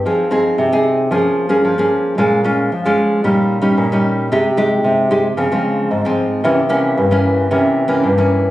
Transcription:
\new Staff \with { instrumentName = "Nylon-string guitar" } { \time 4/4 \key f \minor \tempo 4 = 113 << { <c' ees' aes'>8 <c' ees' aes'>8. <c' ees' aes'>8. <bes des' aes'>8. <bes des' aes'>8 <bes des' aes'>8. | <aes des' f'>8 <aes des' f'>8 r16 <aes des' f'>8. <g des' ees'>8. <g des' ees'>8 <g des' ees'>8. | <aes ees' g'>16 r16 <aes ees' g'>4 <aes ees' g'>16 r16 <f aes c'>16 <f aes c'>4 <f aes c'>8. | <e bes des'>16 r16 <e bes des'>8. <e bes des'>8. <e bes des'>8. <e bes des'>8 <e bes des'>8. | } \\ { f4 c4 f4 f4 | bes,4 f4 bes,4 bes,4 | c4 c4 des4 aes,4 | c4 g,4 c4 g,4 | } >> }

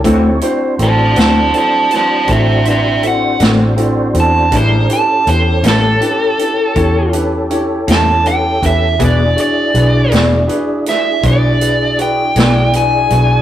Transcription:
<<
  \new Staff \with { instrumentName = "Lead electric guitar" } { \time 12/8 \key d \major \tempo 4. = 54 r4 <c'' a''>8 <c'' a''>8 <c'' a''>8 <c'' a''>8 <c'' e''>8 <c'' e''>8 fis''8 r4 a''8 | c''8 a''8 c''8 a'2 r4 a''8 g''8 e''8 | d''8 d''4 r4 e''8 d''4 g''4 gis''4 | }
  \new Staff \with { instrumentName = "Tonewheel organ" } { \time 12/8 \key d \major <dis' g' cis''>8 <d' fis' c''>1~ <d' fis' c''>4. | <d' gis' bes'>8 <cis' g' a'>1~ <cis' g' a'>4. | <d' e' gis'>1. | }
  \new Staff \with { instrumentName = "Upright piano" } { \time 12/8 \key d \major <c' e' fis' a'>8 <c' e' fis' c''>8 <c' e' fis' a'>8 <c' e' fis' a'>8 <c' e' fis' a'>8 <c' e' fis' b'>8 <c' e' fis' a'>8 <c' e' fis' b'>8 <c' e' fis' a'>8 <c' e' fis' a'>8 <c' e' fis' a'>8 <c' e' fis' a'>8 | <cis' e' g' b'>8 <cis' e' g' b'>8 <cis' e' g' b'>8 <cis' e' g' b'>8 <cis' e' g' b'>8 <cis' e' g' b'>8 <cis' e' g' cis''>8 <cis' e' g' b'>8 <cis' e' g' cis''>8 <cis' e' g' a'>8 <cis' e' g' b'>8 <cis' e' g' b'>8 | <d' fis' gis' b'>8 <d' fis' gis' cis''>8 <d' fis' gis' b'>8 <d' fis' gis' d''>8 <d' fis' gis' b'>8 <d' fis' gis' b'>8 <d' fis' gis' b'>8 <d' fis' gis' b'>8 <d' fis' gis' b'>8 <d' fis' gis' d''>8 <d' fis' gis' b'>8 <d' fis' gis' b'>8 | }
  \new Staff \with { instrumentName = "Clean electric guitar" } { \time 12/8 \key d \major <d a c' fis'>8 r4 <d a c' fis'>8 r2 r8 <d a c' fis'>8 r4 | <a, g cis' e'>8 r4 <a, g cis' e'>8 r2 r8 <a, g cis' e'>8 r4 | <e b d' gis'>8 r4 <e b d' gis'>8 r2 r8 <e b d' gis'>8 r4 | }
  \new Staff \with { instrumentName = "Fingered electric bass" } { \clef bass \time 12/8 \key d \major d,8 r8 a,,8 d,8 r4 a,,4. a,,4 e,8 | a,,8 r8 e,8 a,,8 r4 e,4. e,4 e,8 | e,,8 r8 b,,8 e,,8 r4 b,,4. b,,4 b,,8 | }
  \new DrumStaff \with { instrumentName = "Drums" } \drummode { \time 12/8 <hh bd>8 hh8 hh8 <hh sn>8 hh8 <hh sn>8 <hh bd>8 hh8 hh8 <hh sn>8 hh8 hh8 | <hh bd>8 hh8 hh8 <hh sn>8 hh8 hh8 <hh bd>8 hh8 hh8 <hh sn>8 hh8 <hh bd>8 | <hh bd>8 hh8 hh8 <hh sn>8 hh8 <hh sn>8 <hh bd>8 hh8 hh8 <hh sn>8 hh8 hh8 | }
>>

